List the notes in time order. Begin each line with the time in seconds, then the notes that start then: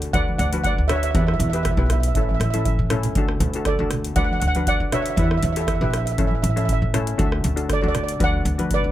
Already playing: D2 A4 D5
0.02 closed hi-hat
0.13 D2 D4 F#4 B4 D5 F#5, kick, closed hi-hat, high conga
0.28 high conga
0.38 D2 D5 F#5, closed hi-hat
0.53 D4 F#4 B4, closed hi-hat, high conga
0.64 D5 F#5, kick, closed hi-hat
0.78 D2
0.88 D4 F#4 B4 C#5 E5, cross-stick, closed hi-hat, low conga
0.96 E5
1.03 E5, closed hi-hat
1.11 E2 E4 G4 E5, kick, closed hi-hat
1.15 B4 E5
1.27 E5, cross-stick
1.34 E5
1.40 E2 E5, closed hi-hat, low conga
1.50 G4 E5, closed hi-hat
1.54 E4 B4 E5
1.63 E5, kick, cross-stick, closed hi-hat, low conga
1.71 E5
1.77 B1 E4 G4 B4 E5
1.86 E5, cross-stick, closed hi-hat
1.92 E5, low conga
2.00 E5, closed hi-hat
2.08 E5
2.15 A1 C#4 E4 A4 E5, kick, closed hi-hat
2.21 E5
2.29 E5, high conga
2.34 E5
2.40 A1 E5, cross-stick, closed hi-hat
2.50 C#4 E4 A4 E5, closed hi-hat
2.55 E5, high conga
2.65 E5, kick, closed hi-hat, high conga
2.79 A2, high conga
2.90 C#4 E4 A4, cross-stick, closed hi-hat, low conga
3.03 closed hi-hat, low conga
3.15 D2 D4 F#4 A4, kick, closed hi-hat
3.29 cross-stick
3.40 D2, closed hi-hat, low conga
3.54 D4 F#4 A4, closed hi-hat
3.65 A4 D5, kick, cross-stick, closed hi-hat
3.79 D2 D4 F#4 A4
3.91 cross-stick, closed hi-hat, low conga
4.05 closed hi-hat
4.16 D2 D4 F#4 B4 D5 F#5, kick, closed hi-hat, high conga
4.24 F#5
4.31 F#5, high conga
4.40 D2 F#5, closed hi-hat
4.48 F#5
4.55 D4 F#4 B4 F#5, closed hi-hat, high conga
4.67 D5 F#5, kick, closed hi-hat
4.80 D3
4.92 D4 F#4 B4 C#5 E5, cross-stick, closed hi-hat, low conga
5.02 E5, closed hi-hat
5.10 E5
5.16 E2 E4 G4 B4 E5, kick, closed hi-hat
5.24 E5
5.31 E5, cross-stick
5.37 E5
5.43 E2 E5, closed hi-hat, low conga
5.53 E5, closed hi-hat
5.57 E4 G4 A4
5.61 E5
5.67 E5, kick, cross-stick, closed hi-hat
5.75 E5
5.81 A#1 E4 G4 B4 E5
5.90 E5, cross-stick, closed hi-hat
5.98 E5
6.06 E5, closed hi-hat
6.12 E5
6.18 A1 C#4 E4 A4 E5, kick, closed hi-hat, high conga
6.27 E5, high conga
6.35 E5
6.42 A1 E5, closed hi-hat
6.50 E5
6.56 C#4 E4 A4 E5, closed hi-hat, high conga
6.65 E5, kick, closed hi-hat
6.73 E5
6.82 A2
6.94 C#4 E4 A4, cross-stick, closed hi-hat, low conga
7.07 closed hi-hat
7.18 D2 D4 F#4 A4, kick, closed hi-hat
7.32 cross-stick
7.44 D2, closed hi-hat, low conga
7.56 D4 F#4 A4, closed hi-hat
7.70 A4 D5, kick, cross-stick, closed hi-hat
7.81 D2 D4 F#4 A4 D5
7.88 D5
7.95 D5, cross-stick, closed hi-hat, low conga
8.04 D5
8.09 D5, closed hi-hat
8.20 D2 D4 F#4 B4 D5, kick, closed hi-hat, high conga
8.24 F#5
8.34 high conga
8.45 D2, closed hi-hat
8.58 D4 F#4 B4, closed hi-hat, high conga
8.71 B4 D5, kick, closed hi-hat
8.84 D2